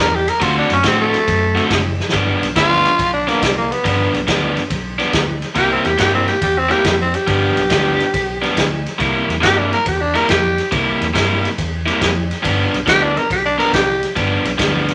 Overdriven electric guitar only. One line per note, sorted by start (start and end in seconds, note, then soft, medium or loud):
0.40 0.74 D3 medium
0.40 0.74 A3 medium
0.40 0.75 C4 medium
0.40 0.75 F#4 medium
0.84 1.17 D3 medium
0.84 1.17 A3 loud
0.84 1.18 C4 loud
0.84 1.18 F#4 medium
1.55 1.79 D3 medium
1.55 1.79 A3 medium
1.55 1.78 C4 loud
1.55 1.78 F#4 medium
2.13 2.46 G2 medium
2.13 2.46 F3 medium
2.13 2.47 B3 medium
2.13 2.47 D4 medium
2.56 2.89 G2 medium
2.56 2.89 F3 medium
2.56 2.89 B3 loud
2.56 2.90 D4 medium
3.27 3.51 G2 medium
3.27 3.50 F3 medium
3.27 3.50 B3 medium
3.27 3.50 D4 medium
3.85 4.18 G2 medium
3.85 4.18 F3 medium
3.85 4.18 B3 medium
3.85 4.19 D4 medium
4.27 4.61 G2 medium
4.27 4.61 F3 medium
4.27 4.61 B3 medium
4.27 4.61 D4 loud
4.99 5.22 G2 medium
4.99 5.22 F3 medium
4.99 5.22 B3 medium
4.99 5.22 D4 medium
5.55 5.89 C3 medium
5.55 5.89 G3 medium
5.55 5.90 A#3 medium
5.55 5.90 E4 loud
5.98 6.32 C3 medium
5.98 6.32 G3 medium
5.98 6.32 A#3 loud
5.98 6.32 E4 medium
6.69 6.94 C3 medium
6.69 6.93 G3 medium
6.69 6.93 A#3 medium
6.69 6.93 E4 loud
7.27 7.61 G2 medium
7.27 7.61 F3 medium
7.27 7.61 B3 medium
7.27 7.62 D4 medium
7.70 8.04 G2 medium
7.70 8.04 F3 medium
7.70 8.04 B3 medium
7.70 8.05 D4 medium
8.42 8.66 G2 medium
8.42 8.66 F3 medium
8.42 8.65 B3 medium
8.42 8.65 D4 medium
8.98 9.33 C3 medium
8.98 9.33 G3 medium
8.98 9.33 A#3 medium
8.98 9.34 E4 medium
9.41 9.75 C3 medium
9.41 9.76 G3 medium
9.41 9.76 A#3 medium
9.41 9.76 E4 loud
10.14 10.38 C3 medium
10.14 10.38 G3 medium
10.14 10.37 A#3 loud
10.14 10.37 E4 medium
10.71 11.05 C3 medium
10.71 11.05 G3 medium
10.71 11.05 A#3 medium
10.71 11.06 E4 loud
11.14 11.48 C3 medium
11.14 11.48 G3 medium
11.14 11.48 A#3 medium
11.14 11.48 E4 loud
11.86 12.10 C3 medium
11.86 12.10 G3 medium
11.86 12.09 A#3 medium
11.86 12.09 E4 medium
12.42 12.76 G2 medium
12.42 12.77 F3 medium
12.42 12.77 B3 loud
12.42 12.77 D4 loud
12.86 13.20 G2 medium
12.86 13.20 F3 medium
12.86 13.20 B3 loud
12.86 13.21 D4 loud
13.58 13.82 G2 medium
13.58 13.82 F3 medium
13.58 13.81 B3 medium
13.58 13.81 D4 medium
14.16 14.49 G2 medium
14.16 14.49 F3 medium
14.16 14.49 B3 loud
14.16 14.50 D4 medium
14.58 14.92 G2 medium
14.58 14.92 F3 loud
14.58 14.92 B3 medium
14.58 14.92 D4 medium